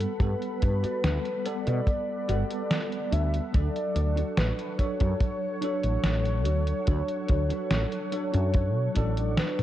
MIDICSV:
0, 0, Header, 1, 9, 480
1, 0, Start_track
1, 0, Key_signature, 2, "major"
1, 0, Tempo, 833333
1, 120, Time_signature, 4, 2, 24, 8
1, 5546, End_track
2, 0, Start_track
2, 0, Title_t, "String machine"
2, 0, Program_c, 0, 50
2, 0, Note_on_c, 0, 69, 78
2, 0, Note_on_c, 0, 78, 74
2, 0, Note_on_c, 0, 83, 90
2, 2016, Note_off_c, 0, 69, 0
2, 2017, Note_off_c, 0, 78, 0
2, 2017, Note_off_c, 0, 83, 0
2, 2039, Note_on_c, 0, 78, 77
2, 2040, Note_on_c, 0, 69, 82
2, 2040, Note_on_c, 0, 85, 73
2, 5546, Note_off_c, 0, 69, 0
2, 5546, Note_off_c, 0, 78, 0
2, 5546, Note_off_c, 0, 85, 0
2, 5546, End_track
3, 0, Start_track
3, 0, Title_t, "Soft synth lead"
3, 0, Program_c, 1, 80
3, 0, Note_on_c, 1, 69, 100
3, 123, Note_on_c, 1, 71, 107
3, 132, Note_off_c, 1, 69, 0
3, 842, Note_on_c, 1, 74, 116
3, 850, Note_off_c, 1, 71, 0
3, 1801, Note_on_c, 1, 76, 103
3, 1809, Note_off_c, 1, 74, 0
3, 2040, Note_off_c, 1, 76, 0
3, 2043, Note_on_c, 1, 74, 113
3, 2521, Note_on_c, 1, 71, 94
3, 2530, Note_off_c, 1, 74, 0
3, 2755, Note_off_c, 1, 71, 0
3, 2758, Note_on_c, 1, 73, 100
3, 5136, Note_off_c, 1, 73, 0
3, 5161, Note_on_c, 1, 74, 119
3, 5404, Note_on_c, 1, 71, 120
3, 5413, Note_off_c, 1, 74, 0
3, 5546, Note_off_c, 1, 71, 0
3, 5546, End_track
4, 0, Start_track
4, 0, Title_t, "Clean electric guitar"
4, 0, Program_c, 2, 27
4, 477, Note_on_c, 2, 66, 82
4, 480, Note_on_c, 2, 67, 76
4, 485, Note_on_c, 2, 69, 76
4, 487, Note_on_c, 2, 74, 91
4, 597, Note_off_c, 2, 66, 0
4, 598, Note_off_c, 2, 67, 0
4, 601, Note_off_c, 2, 69, 0
4, 602, Note_off_c, 2, 74, 0
4, 960, Note_on_c, 2, 66, 77
4, 963, Note_on_c, 2, 67, 73
4, 966, Note_on_c, 2, 69, 74
4, 969, Note_on_c, 2, 74, 88
4, 1078, Note_off_c, 2, 66, 0
4, 1080, Note_off_c, 2, 67, 0
4, 1081, Note_off_c, 2, 69, 0
4, 1083, Note_off_c, 2, 74, 0
4, 1315, Note_on_c, 2, 66, 85
4, 1319, Note_on_c, 2, 67, 81
4, 1321, Note_on_c, 2, 69, 76
4, 1326, Note_on_c, 2, 71, 92
4, 1441, Note_off_c, 2, 66, 0
4, 1443, Note_off_c, 2, 67, 0
4, 1445, Note_off_c, 2, 69, 0
4, 1447, Note_off_c, 2, 71, 0
4, 1792, Note_on_c, 2, 66, 91
4, 1796, Note_on_c, 2, 67, 83
4, 1799, Note_on_c, 2, 69, 82
4, 1803, Note_on_c, 2, 73, 100
4, 1920, Note_off_c, 2, 66, 0
4, 1922, Note_off_c, 2, 67, 0
4, 1923, Note_off_c, 2, 69, 0
4, 1926, Note_off_c, 2, 73, 0
4, 2395, Note_on_c, 2, 62, 83
4, 2399, Note_on_c, 2, 66, 73
4, 2402, Note_on_c, 2, 69, 76
4, 2406, Note_on_c, 2, 73, 93
4, 2516, Note_off_c, 2, 62, 0
4, 2518, Note_off_c, 2, 66, 0
4, 2519, Note_off_c, 2, 69, 0
4, 2521, Note_off_c, 2, 73, 0
4, 2876, Note_on_c, 2, 62, 82
4, 2880, Note_on_c, 2, 66, 72
4, 2883, Note_on_c, 2, 69, 74
4, 2887, Note_on_c, 2, 73, 89
4, 2996, Note_off_c, 2, 62, 0
4, 2998, Note_off_c, 2, 66, 0
4, 3000, Note_off_c, 2, 69, 0
4, 3002, Note_off_c, 2, 73, 0
4, 3232, Note_on_c, 2, 62, 88
4, 3236, Note_on_c, 2, 66, 76
4, 3240, Note_on_c, 2, 69, 78
4, 3242, Note_on_c, 2, 71, 99
4, 3360, Note_off_c, 2, 62, 0
4, 3362, Note_off_c, 2, 66, 0
4, 3363, Note_off_c, 2, 69, 0
4, 3365, Note_off_c, 2, 71, 0
4, 3711, Note_on_c, 2, 62, 94
4, 3714, Note_on_c, 2, 66, 79
4, 3717, Note_on_c, 2, 69, 83
4, 3721, Note_on_c, 2, 73, 96
4, 3839, Note_off_c, 2, 62, 0
4, 3841, Note_off_c, 2, 66, 0
4, 3843, Note_off_c, 2, 69, 0
4, 3844, Note_off_c, 2, 73, 0
4, 4313, Note_on_c, 2, 62, 82
4, 4316, Note_on_c, 2, 66, 75
4, 4321, Note_on_c, 2, 69, 75
4, 4324, Note_on_c, 2, 71, 94
4, 4435, Note_off_c, 2, 62, 0
4, 4436, Note_off_c, 2, 66, 0
4, 4439, Note_off_c, 2, 69, 0
4, 4440, Note_off_c, 2, 71, 0
4, 4792, Note_on_c, 2, 62, 83
4, 4795, Note_on_c, 2, 66, 74
4, 4799, Note_on_c, 2, 69, 74
4, 4803, Note_on_c, 2, 73, 93
4, 4914, Note_off_c, 2, 62, 0
4, 4916, Note_off_c, 2, 66, 0
4, 4918, Note_off_c, 2, 69, 0
4, 4920, Note_off_c, 2, 73, 0
4, 5152, Note_on_c, 2, 62, 88
4, 5156, Note_on_c, 2, 66, 80
4, 5159, Note_on_c, 2, 69, 78
4, 5163, Note_on_c, 2, 73, 94
4, 5280, Note_off_c, 2, 62, 0
4, 5282, Note_off_c, 2, 66, 0
4, 5284, Note_off_c, 2, 69, 0
4, 5286, Note_off_c, 2, 73, 0
4, 5546, End_track
5, 0, Start_track
5, 0, Title_t, "Tine electric piano"
5, 0, Program_c, 3, 4
5, 0, Control_c, 3, 64, 127
5, 0, Note_on_c, 3, 55, 89
5, 0, Note_on_c, 3, 59, 77
5, 0, Note_on_c, 3, 69, 94
5, 0, Note_on_c, 3, 78, 78
5, 89, Note_off_c, 3, 55, 0
5, 91, Note_off_c, 3, 59, 0
5, 94, Note_off_c, 3, 78, 0
5, 98, Note_off_c, 3, 69, 0
5, 112, Note_on_c, 3, 55, 79
5, 117, Note_on_c, 3, 59, 67
5, 124, Note_on_c, 3, 78, 69
5, 129, Note_on_c, 3, 69, 82
5, 808, Note_off_c, 3, 55, 0
5, 811, Note_off_c, 3, 59, 0
5, 814, Note_off_c, 3, 78, 0
5, 817, Note_off_c, 3, 69, 0
5, 836, Note_on_c, 3, 55, 80
5, 839, Note_on_c, 3, 59, 70
5, 843, Note_on_c, 3, 78, 73
5, 844, Note_on_c, 3, 69, 88
5, 1295, Note_off_c, 3, 55, 0
5, 1296, Note_off_c, 3, 59, 0
5, 1298, Note_off_c, 3, 78, 0
5, 1299, Note_off_c, 3, 69, 0
5, 1312, Note_on_c, 3, 55, 83
5, 1317, Note_on_c, 3, 59, 80
5, 1322, Note_on_c, 3, 78, 78
5, 1329, Note_on_c, 3, 69, 91
5, 2008, Note_off_c, 3, 55, 0
5, 2011, Note_off_c, 3, 59, 0
5, 2013, Note_off_c, 3, 78, 0
5, 2017, Note_off_c, 3, 69, 0
5, 2030, Note_on_c, 3, 54, 79
5, 2037, Note_on_c, 3, 74, 72
5, 2042, Note_on_c, 3, 62, 66
5, 2047, Control_c, 3, 64, 0
5, 2048, Note_on_c, 3, 69, 84
5, 2149, Control_c, 3, 64, 127
5, 2727, Note_off_c, 3, 54, 0
5, 2731, Note_off_c, 3, 74, 0
5, 2733, Note_off_c, 3, 62, 0
5, 2736, Note_off_c, 3, 69, 0
5, 2755, Note_on_c, 3, 54, 80
5, 2758, Note_on_c, 3, 73, 73
5, 2762, Note_on_c, 3, 62, 75
5, 2765, Note_on_c, 3, 69, 91
5, 3215, Note_off_c, 3, 54, 0
5, 3216, Note_off_c, 3, 73, 0
5, 3218, Note_off_c, 3, 62, 0
5, 3219, Note_off_c, 3, 69, 0
5, 3232, Note_on_c, 3, 54, 89
5, 3237, Note_on_c, 3, 73, 79
5, 3244, Note_on_c, 3, 62, 79
5, 3249, Note_on_c, 3, 69, 94
5, 3928, Note_off_c, 3, 54, 0
5, 3931, Note_off_c, 3, 73, 0
5, 3934, Note_off_c, 3, 62, 0
5, 3937, Note_off_c, 3, 69, 0
5, 3949, Note_on_c, 3, 54, 78
5, 3955, Note_on_c, 3, 73, 68
5, 3960, Note_on_c, 3, 62, 69
5, 3966, Note_on_c, 3, 69, 84
5, 4647, Note_off_c, 3, 54, 0
5, 4650, Note_off_c, 3, 73, 0
5, 4652, Note_off_c, 3, 62, 0
5, 4655, Note_off_c, 3, 69, 0
5, 4674, Note_on_c, 3, 54, 84
5, 4678, Note_on_c, 3, 73, 74
5, 4680, Note_on_c, 3, 62, 75
5, 4684, Note_on_c, 3, 69, 91
5, 5134, Note_off_c, 3, 54, 0
5, 5136, Note_off_c, 3, 73, 0
5, 5137, Note_off_c, 3, 62, 0
5, 5139, Note_off_c, 3, 69, 0
5, 5149, Note_on_c, 3, 54, 87
5, 5161, Note_on_c, 3, 62, 81
5, 5167, Note_on_c, 3, 69, 96
5, 5546, Note_off_c, 3, 54, 0
5, 5546, Note_off_c, 3, 62, 0
5, 5546, Note_off_c, 3, 69, 0
5, 5546, End_track
6, 0, Start_track
6, 0, Title_t, "Fretless electric bass"
6, 0, Program_c, 4, 35
6, 116, Note_on_c, 4, 43, 99
6, 194, Note_off_c, 4, 43, 0
6, 363, Note_on_c, 4, 43, 97
6, 481, Note_off_c, 4, 43, 0
6, 598, Note_on_c, 4, 38, 97
6, 675, Note_off_c, 4, 38, 0
6, 964, Note_on_c, 4, 47, 106
6, 1035, Note_off_c, 4, 47, 0
6, 1319, Note_on_c, 4, 31, 94
6, 1395, Note_off_c, 4, 31, 0
6, 1798, Note_on_c, 4, 38, 103
6, 1949, Note_off_c, 4, 38, 0
6, 2042, Note_on_c, 4, 38, 103
6, 2117, Note_off_c, 4, 38, 0
6, 2279, Note_on_c, 4, 38, 97
6, 2429, Note_off_c, 4, 38, 0
6, 2519, Note_on_c, 4, 33, 97
6, 2595, Note_off_c, 4, 33, 0
6, 2885, Note_on_c, 4, 42, 106
6, 2956, Note_off_c, 4, 42, 0
6, 3362, Note_on_c, 4, 33, 84
6, 3434, Note_off_c, 4, 33, 0
6, 3478, Note_on_c, 4, 33, 88
6, 3717, Note_off_c, 4, 33, 0
6, 3717, Note_on_c, 4, 38, 80
6, 3869, Note_off_c, 4, 38, 0
6, 3961, Note_on_c, 4, 38, 99
6, 4036, Note_off_c, 4, 38, 0
6, 4202, Note_on_c, 4, 38, 97
6, 4319, Note_off_c, 4, 38, 0
6, 4438, Note_on_c, 4, 33, 96
6, 4515, Note_off_c, 4, 33, 0
6, 4805, Note_on_c, 4, 42, 101
6, 5043, Note_off_c, 4, 42, 0
6, 5043, Note_on_c, 4, 47, 92
6, 5114, Note_off_c, 4, 47, 0
6, 5163, Note_on_c, 4, 33, 80
6, 5402, Note_off_c, 4, 33, 0
6, 5546, End_track
7, 0, Start_track
7, 0, Title_t, "Muted clean electric guitar strokes"
7, 353, Note_on_c, 9, 29, 85
7, 411, Note_off_c, 9, 29, 0
7, 833, Note_on_c, 9, 29, 88
7, 891, Note_off_c, 9, 29, 0
7, 2273, Note_on_c, 9, 29, 89
7, 2331, Note_off_c, 9, 29, 0
7, 2753, Note_on_c, 9, 29, 89
7, 2811, Note_off_c, 9, 29, 0
7, 4188, Note_on_c, 9, 29, 88
7, 4246, Note_off_c, 9, 29, 0
7, 4672, Note_on_c, 9, 29, 86
7, 4730, Note_off_c, 9, 29, 0
7, 5546, End_track
8, 0, Start_track
8, 0, Title_t, "Muted fretless electric bass strokes"
8, 485, Note_on_c, 9, 29, 45
8, 542, Note_off_c, 9, 29, 0
8, 4323, Note_on_c, 9, 29, 47
8, 4380, Note_off_c, 9, 29, 0
8, 5546, End_track
9, 0, Start_track
9, 0, Title_t, "Drums"
9, 4, Note_on_c, 9, 42, 49
9, 61, Note_off_c, 9, 42, 0
9, 116, Note_on_c, 9, 36, 117
9, 119, Note_on_c, 9, 42, 79
9, 174, Note_off_c, 9, 36, 0
9, 177, Note_off_c, 9, 42, 0
9, 242, Note_on_c, 9, 42, 35
9, 300, Note_off_c, 9, 42, 0
9, 358, Note_on_c, 9, 42, 78
9, 362, Note_on_c, 9, 36, 104
9, 416, Note_off_c, 9, 42, 0
9, 420, Note_off_c, 9, 36, 0
9, 483, Note_on_c, 9, 42, 50
9, 540, Note_off_c, 9, 42, 0
9, 599, Note_on_c, 9, 38, 113
9, 599, Note_on_c, 9, 42, 80
9, 656, Note_off_c, 9, 38, 0
9, 656, Note_off_c, 9, 42, 0
9, 722, Note_on_c, 9, 42, 35
9, 780, Note_off_c, 9, 42, 0
9, 839, Note_on_c, 9, 42, 77
9, 896, Note_off_c, 9, 42, 0
9, 961, Note_on_c, 9, 42, 48
9, 1019, Note_off_c, 9, 42, 0
9, 1076, Note_on_c, 9, 36, 106
9, 1077, Note_on_c, 9, 42, 81
9, 1134, Note_off_c, 9, 36, 0
9, 1135, Note_off_c, 9, 42, 0
9, 1318, Note_on_c, 9, 42, 73
9, 1375, Note_off_c, 9, 42, 0
9, 1443, Note_on_c, 9, 42, 51
9, 1500, Note_off_c, 9, 42, 0
9, 1559, Note_on_c, 9, 38, 114
9, 1559, Note_on_c, 9, 42, 79
9, 1617, Note_off_c, 9, 38, 0
9, 1617, Note_off_c, 9, 42, 0
9, 1683, Note_on_c, 9, 42, 35
9, 1741, Note_off_c, 9, 42, 0
9, 1800, Note_on_c, 9, 42, 80
9, 1858, Note_off_c, 9, 42, 0
9, 1923, Note_on_c, 9, 42, 50
9, 1980, Note_off_c, 9, 42, 0
9, 2040, Note_on_c, 9, 42, 79
9, 2041, Note_on_c, 9, 36, 120
9, 2098, Note_off_c, 9, 42, 0
9, 2099, Note_off_c, 9, 36, 0
9, 2165, Note_on_c, 9, 42, 38
9, 2223, Note_off_c, 9, 42, 0
9, 2280, Note_on_c, 9, 42, 77
9, 2337, Note_off_c, 9, 42, 0
9, 2404, Note_on_c, 9, 42, 49
9, 2461, Note_off_c, 9, 42, 0
9, 2519, Note_on_c, 9, 38, 116
9, 2519, Note_on_c, 9, 42, 82
9, 2577, Note_off_c, 9, 38, 0
9, 2577, Note_off_c, 9, 42, 0
9, 2643, Note_on_c, 9, 42, 37
9, 2700, Note_off_c, 9, 42, 0
9, 2759, Note_on_c, 9, 36, 59
9, 2759, Note_on_c, 9, 42, 80
9, 2816, Note_off_c, 9, 42, 0
9, 2817, Note_off_c, 9, 36, 0
9, 2881, Note_on_c, 9, 42, 52
9, 2885, Note_on_c, 9, 36, 95
9, 2938, Note_off_c, 9, 42, 0
9, 2942, Note_off_c, 9, 36, 0
9, 2998, Note_on_c, 9, 36, 108
9, 2998, Note_on_c, 9, 42, 82
9, 3055, Note_off_c, 9, 42, 0
9, 3056, Note_off_c, 9, 36, 0
9, 3237, Note_on_c, 9, 42, 78
9, 3295, Note_off_c, 9, 42, 0
9, 3360, Note_on_c, 9, 42, 53
9, 3418, Note_off_c, 9, 42, 0
9, 3476, Note_on_c, 9, 38, 114
9, 3476, Note_on_c, 9, 42, 78
9, 3534, Note_off_c, 9, 38, 0
9, 3534, Note_off_c, 9, 42, 0
9, 3601, Note_on_c, 9, 42, 37
9, 3659, Note_off_c, 9, 42, 0
9, 3716, Note_on_c, 9, 42, 80
9, 3773, Note_off_c, 9, 42, 0
9, 3841, Note_on_c, 9, 42, 52
9, 3899, Note_off_c, 9, 42, 0
9, 3957, Note_on_c, 9, 42, 83
9, 3961, Note_on_c, 9, 36, 112
9, 4014, Note_off_c, 9, 42, 0
9, 4019, Note_off_c, 9, 36, 0
9, 4080, Note_on_c, 9, 42, 40
9, 4138, Note_off_c, 9, 42, 0
9, 4196, Note_on_c, 9, 42, 84
9, 4202, Note_on_c, 9, 36, 103
9, 4253, Note_off_c, 9, 42, 0
9, 4259, Note_off_c, 9, 36, 0
9, 4321, Note_on_c, 9, 42, 54
9, 4379, Note_off_c, 9, 42, 0
9, 4438, Note_on_c, 9, 38, 120
9, 4438, Note_on_c, 9, 42, 88
9, 4496, Note_off_c, 9, 38, 0
9, 4496, Note_off_c, 9, 42, 0
9, 4561, Note_on_c, 9, 42, 38
9, 4619, Note_off_c, 9, 42, 0
9, 4678, Note_on_c, 9, 42, 85
9, 4736, Note_off_c, 9, 42, 0
9, 4801, Note_on_c, 9, 42, 53
9, 4859, Note_off_c, 9, 42, 0
9, 4917, Note_on_c, 9, 42, 79
9, 4922, Note_on_c, 9, 36, 111
9, 4975, Note_off_c, 9, 42, 0
9, 4980, Note_off_c, 9, 36, 0
9, 5157, Note_on_c, 9, 42, 82
9, 5163, Note_on_c, 9, 36, 60
9, 5215, Note_off_c, 9, 42, 0
9, 5221, Note_off_c, 9, 36, 0
9, 5282, Note_on_c, 9, 42, 55
9, 5339, Note_off_c, 9, 42, 0
9, 5399, Note_on_c, 9, 38, 119
9, 5399, Note_on_c, 9, 42, 81
9, 5456, Note_off_c, 9, 38, 0
9, 5456, Note_off_c, 9, 42, 0
9, 5523, Note_on_c, 9, 42, 38
9, 5523, Note_on_c, 9, 48, 53
9, 5546, Note_off_c, 9, 42, 0
9, 5546, Note_off_c, 9, 48, 0
9, 5546, End_track
0, 0, End_of_file